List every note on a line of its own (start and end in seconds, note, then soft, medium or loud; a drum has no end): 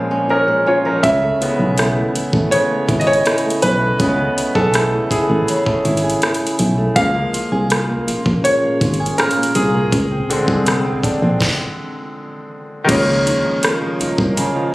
0.00 1.03 A#2 medium
0.00 0.98 C#3 medium
0.00 0.28 F3 medium
0.00 0.48 G#3 medium
0.00 0.99 G#3 medium
0.00 1.00 A#3 medium
0.00 0.27 C4 medium
0.00 0.11 C#4 medium
0.00 0.28 F4 medium
0.11 0.66 C#4 medium
0.29 0.84 F3 medium
0.29 0.66 C#4 medium
0.29 0.65 A#4 medium
0.48 1.22 G#3 medium
0.66 1.40 C#4 medium
0.66 0.85 F4 medium
0.66 0.85 C#5 medium
0.85 1.11 F3 medium
0.85 1.21 C#4 medium
0.85 1.21 A#4 medium
1.03 1.33 C#2 loud
1.03 2.50 C#3 medium
1.03 2.10 E5 loud
1.03 kick loud
1.03 closed hi-hat medium
1.22 1.95 A3 medium
1.41 2.48 C#3 medium
1.41 2.48 G#3 medium
1.41 2.49 B3 medium
1.41 1.77 E4 medium
1.41 closed hi-hat medium
1.59 2.03 B1 medium
1.59 3.07 G#4 medium
1.78 2.14 E4 medium
1.78 cross-stick loud
1.78 closed hi-hat medium
1.96 2.32 A3 medium
2.15 2.22 A1 soft
2.15 2.88 E4 medium
2.15 closed hi-hat medium
2.33 2.48 A1 medium
2.33 2.69 A3 medium
2.33 kick medium
2.51 3.98 C#3 medium
2.51 2.85 C#3 medium
2.51 2.86 G#3 soft
2.51 2.86 B3 medium
2.51 2.97 C#5 loud
2.51 closed hi-hat medium
2.70 3.43 A3 medium
2.89 3.18 G#1 medium
2.89 3.25 E4 medium
2.89 kick medium
2.89 closed hi-hat soft
3.00 3.07 D#5 medium
3.00 closed hi-hat soft
3.07 4.55 G#4 medium
3.07 3.59 C#5 loud
3.13 closed hi-hat soft
3.26 3.62 E4 medium
3.26 cross-stick loud
3.26 closed hi-hat medium
3.38 closed hi-hat medium
3.44 3.80 A3 medium
3.50 closed hi-hat medium
3.62 3.92 B1 medium
3.62 4.36 E4 medium
3.62 4.58 B4 loud
3.62 closed hi-hat medium
3.81 4.17 A3 medium
4.00 4.29 C#2 loud
4.00 5.47 C#3 medium
4.00 4.49 C#3 medium
4.00 4.50 G#3 medium
4.00 4.50 B3 medium
4.00 kick loud
4.00 closed hi-hat medium
4.19 4.91 A3 medium
4.37 4.73 E4 medium
4.37 closed hi-hat medium
4.55 4.99 B1 medium
4.55 6.03 G#4 medium
4.55 5.07 A4 medium
4.55 kick medium
4.74 5.10 E4 medium
4.74 cross-stick loud
4.74 closed hi-hat medium
4.92 5.28 A3 medium
5.11 5.18 A1 medium
5.11 5.84 E4 medium
5.11 6.55 G#4 medium
5.11 kick medium
5.11 closed hi-hat medium
5.30 5.44 A1 medium
5.30 5.65 A3 medium
5.48 6.96 C#3 medium
5.48 closed hi-hat medium
5.66 6.40 A3 medium
5.66 kick medium
5.85 6.15 G#1 medium
5.85 6.21 E4 medium
5.85 closed hi-hat soft
5.97 closed hi-hat soft
6.04 7.18 G#4 medium
6.10 closed hi-hat medium
6.22 6.58 E4 medium
6.22 cross-stick loud
6.22 closed hi-hat medium
6.34 closed hi-hat medium
6.41 6.77 A3 medium
6.47 closed hi-hat medium
6.59 6.89 B1 medium
6.59 7.04 E4 medium
6.59 closed hi-hat medium
6.78 7.04 A3 medium
6.96 7.26 C#2 loud
6.96 11.37 A#2 medium
6.96 7.46 F3 medium
6.96 7.46 G#3 medium
6.96 7.46 A#3 medium
6.96 9.89 C#4 medium
6.96 9.89 F4 medium
6.96 11.37 G#4 medium
6.96 9.89 A#4 medium
6.96 8.40 F5 loud
6.96 kick loud
6.96 closed hi-hat medium
7.15 7.88 A#3 medium
7.33 7.69 F4 medium
7.33 closed hi-hat medium
7.52 7.96 C2 medium
7.52 8.99 G#4 medium
7.70 8.06 F4 medium
7.70 cross-stick loud
7.70 closed hi-hat medium
7.89 8.25 A#3 medium
8.07 8.15 A#1 soft
8.07 8.80 F4 medium
8.07 closed hi-hat medium
8.26 8.41 A#1 medium
8.26 8.62 A#3 medium
8.26 kick medium
8.44 9.21 C#5 loud
8.44 closed hi-hat medium
8.63 9.36 A#3 medium
8.81 9.11 G#1 loud
8.81 9.17 F4 medium
8.81 kick medium
8.81 closed hi-hat soft
8.94 closed hi-hat soft
9.00 10.33 G#4 medium
9.06 closed hi-hat medium
9.18 9.54 F4 medium
9.18 9.56 A#4 medium
9.18 cross-stick loud
9.18 closed hi-hat soft
9.31 closed hi-hat medium
9.37 9.73 A#3 medium
9.43 closed hi-hat medium
9.55 9.85 C2 loud
9.55 10.00 F4 medium
9.55 12.11 G#4 medium
9.55 closed hi-hat medium
9.74 10.00 A#3 medium
9.92 10.22 C#2 loud
9.92 11.39 C4 medium
9.92 11.39 D4 medium
9.92 11.39 G5 medium
9.92 kick loud
9.92 closed hi-hat medium
10.11 10.84 C4 medium
10.30 10.79 D3 medium
10.30 10.79 G#3 medium
10.30 10.80 C4 medium
10.30 10.65 D4 medium
10.30 closed hi-hat medium
10.48 10.92 C2 medium
10.48 11.98 G#4 medium
10.48 kick medium
10.66 11.02 D4 medium
10.66 cross-stick loud
10.66 closed hi-hat medium
10.85 11.21 C4 medium
11.03 11.11 A#1 medium
11.03 11.48 D4 medium
11.03 kick medium
11.03 closed hi-hat medium
11.22 11.37 A#1 medium
11.22 11.48 C4 medium
11.41 kick loud
11.41 snare medium
12.84 14.74 D#3 medium
12.84 14.74 G#3 medium
12.89 13.33 C#2 loud
12.89 14.36 C#3 medium
12.89 14.74 A#3 medium
12.89 14.74 C#4 medium
12.89 14.74 F4 medium
12.89 14.74 D#5 medium
12.89 14.74 A#5 medium
12.89 kick loud
12.89 closed hi-hat medium
12.89 crash medium
12.94 14.74 F4 medium
13.07 13.43 F3 medium
13.26 13.99 D#4 medium
13.26 closed hi-hat medium
13.44 13.52 C2 medium
13.44 13.80 F3 medium
13.63 14.18 A#3 medium
13.63 cross-stick loud
13.63 closed hi-hat medium
13.81 14.54 F3 medium
14.00 14.08 C2 medium
14.00 14.74 D#4 medium
14.00 closed hi-hat medium
14.18 14.33 C2 medium
14.18 14.74 A#3 medium
14.18 kick medium
14.37 14.74 C#3 medium
14.37 closed hi-hat medium
14.55 14.74 F3 medium